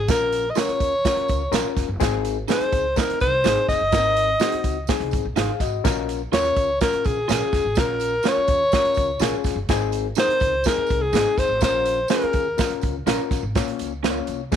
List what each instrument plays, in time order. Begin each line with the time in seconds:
0.08 upright bass A#1, reed electric piano C#4 F4 A4, alto saxophone A#4, kick, snare, closed hi-hat, tambourine
0.14 reed electric piano A#4
0.32 closed hi-hat, tambourine
0.50 alto saxophone D#5
0.55 reed electric piano C#4 F4 A#4, clean electric guitar F4 A#4 C#5, alto saxophone C#5, snare, closed hi-hat, tambourine
0.68 muted upright bass stroke, closed hi-hat
0.80 upright bass D#2, kick, closed hi-hat, tambourine
1.05 reed electric piano C#4 F4 A#4, kick, snare, closed hi-hat, tambourine
1.17 muted upright bass stroke, closed hi-hat
1.28 upright bass C#2, kick, closed hi-hat, tambourine
1.52 upright bass A#1, reed electric piano C#4 F4 A#4, clean electric guitar F4 A#4 C#5, snare, closed hi-hat, tambourine
1.76 upright bass F1, kick, snare, closed hi-hat, tambourine
1.88 upright bass F#1
2.00 upright bass G#1, reed electric piano C4 D#4 G#4, kick, snare, closed hi-hat, tambourine
2.25 closed hi-hat, tambourine
2.48 reed electric piano C4 D#4 G#4, clean electric guitar D#4 G#4 C5, alto saxophone C5, snare, closed hi-hat, tambourine
2.60 muted upright bass stroke, closed hi-hat
2.72 upright bass C#2, kick, closed hi-hat, tambourine
2.96 reed electric piano C4 D#4 A#4, alto saxophone A#4, kick, snare, closed hi-hat, tambourine
3.09 muted upright bass stroke, closed hi-hat
3.20 upright bass C2, alto saxophone C5, kick, closed hi-hat, tambourine
3.44 upright bass G#1, reed electric piano C4 D#4 G#4, clean electric guitar D#4 G#4 C5, snare, closed hi-hat, tambourine
3.69 upright bass F1, alto saxophone D#5, kick, snare, closed hi-hat, tambourine
3.81 upright bass F#1
3.92 upright bass G#1, reed electric piano A#3 D#4 A#4, kick, snare, closed hi-hat, tambourine
3.98 reed electric piano C4
4.17 closed hi-hat, tambourine
4.40 reed electric piano C4 D#4 F#4, clean electric guitar D#4 G#4 C5, snare, closed hi-hat, tambourine
4.52 muted upright bass stroke, closed hi-hat
4.64 upright bass C#2, kick, closed hi-hat, tambourine
4.87 reed electric piano C4 D#4 G#4, kick, snare, closed hi-hat, tambourine
5.00 upright bass C2, closed hi-hat
5.11 upright bass G#1, kick, closed hi-hat, tambourine
5.25 upright bass A#1
5.36 upright bass G#1, clean electric guitar D#4 G#4 C5, reed electric piano G#4 F5, snare, closed hi-hat, tambourine
5.60 upright bass G#1, reed electric piano F#4 D#5, kick, snare, closed hi-hat, tambourine
5.84 upright bass A#1, reed electric piano C#4 F4 A#4, kick, snare, closed hi-hat, tambourine
6.09 closed hi-hat, tambourine
6.32 upright bass D#2, reed electric piano C#4 F4 A#4, clean electric guitar F4 A#4 C#5, alto saxophone C#5, snare, closed hi-hat, tambourine
6.45 closed hi-hat
6.57 upright bass C#2, kick, closed hi-hat, tambourine
6.81 reed electric piano C#4 F4 A#4, alto saxophone A#4, kick, snare, closed hi-hat, tambourine
6.93 muted upright bass stroke, closed hi-hat
7.04 upright bass A#1, alto saxophone G#4, kick, closed hi-hat, tambourine
7.28 upright bass A#1, reed electric piano C#4 F4 G#4, clean electric guitar F4 A#4 C#5, snare, closed hi-hat, tambourine
7.53 upright bass F#1, kick, snare, closed hi-hat, tambourine
7.65 upright bass G#1
7.75 upright bass A#1, reed electric piano C#4 F4 A#4, kick, snare, closed hi-hat, tambourine
7.80 alto saxophone A#4
8.00 closed hi-hat, tambourine
8.23 reed electric piano C#4 F4 C#5, clean electric guitar F4 A#4 C#5, snare, closed hi-hat, tambourine
8.28 alto saxophone C#5
8.37 muted upright bass stroke
8.48 upright bass D#2, kick, closed hi-hat, tambourine
8.72 reed electric piano C#4 F4 A#4, kick, snare, closed hi-hat, tambourine
8.85 muted upright bass stroke, closed hi-hat
8.94 upright bass C#2, kick, closed hi-hat, tambourine
9.19 upright bass A#1, reed electric piano C#4 F4 G#4, clean electric guitar F4 A#4 C#5, snare, closed hi-hat, tambourine
9.44 upright bass F1, kick, snare, closed hi-hat, tambourine
9.56 upright bass F#1
9.69 upright bass G#1, reed electric piano C4 D#4 G#4, kick, snare, closed hi-hat, tambourine
9.92 closed hi-hat, tambourine
10.15 reed electric piano C4 D#4 A#4, clean electric guitar D#4 G#4 C5, snare, closed hi-hat, tambourine
10.19 alto saxophone C5
10.28 muted upright bass stroke, closed hi-hat
10.40 upright bass C#2, kick, closed hi-hat, tambourine
10.64 reed electric piano C4 D#4 G#4, alto saxophone A#4, kick, snare, closed hi-hat, tambourine
10.78 muted upright bass stroke
10.87 upright bass C2, kick, tambourine
10.91 closed hi-hat
11.02 alto saxophone G#4
11.13 upright bass G#1, reed electric piano A#3 D#4 G#4, clean electric guitar D#4 G#4 C5, snare, closed hi-hat, tambourine
11.20 reed electric piano C4
11.38 upright bass F#1, alto saxophone C5, kick, snare, closed hi-hat, tambourine
11.49 upright bass G#1
11.61 upright bass A#1, reed electric piano C#4 F4 A#4, alto saxophone C5, kick, snare, closed hi-hat, tambourine
11.85 closed hi-hat, tambourine
12.08 reed electric piano C#4 F4 G#4, clean electric guitar C#4 F4, alto saxophone A#4, snare, closed hi-hat, tambourine
12.12 clean electric guitar A#4
12.21 muted upright bass stroke, closed hi-hat
12.33 upright bass D#2, kick, closed hi-hat, tambourine
12.58 reed electric piano C4 F4 A#4, kick, snare, closed hi-hat, tambourine
12.64 reed electric piano C#4
12.70 muted upright bass stroke, closed hi-hat
12.81 upright bass C#2, kick, closed hi-hat, tambourine
13.06 upright bass A#1, clean electric guitar C#4 F4 A#4, reed electric piano C#4 F4 A#4, snare, closed hi-hat, tambourine
13.31 upright bass F#1, kick, snare, closed hi-hat, tambourine
13.43 upright bass G#1
13.55 upright bass A#1, reed electric piano A#3 C#4 F4 C#5, kick, snare, closed hi-hat, tambourine
13.68 closed hi-hat
13.79 upright bass C#2, closed hi-hat, tambourine
14.03 reed electric piano A#3 C#4 F4 C5, clean electric guitar C#4 F4 A#4, snare, closed hi-hat, tambourine
14.10 reed electric piano C#5
14.27 upright bass C2, closed hi-hat, tambourine
14.52 upright bass A#1, reed electric piano A#3 C4 F4 G#4, kick, snare, closed hi-hat, tambourine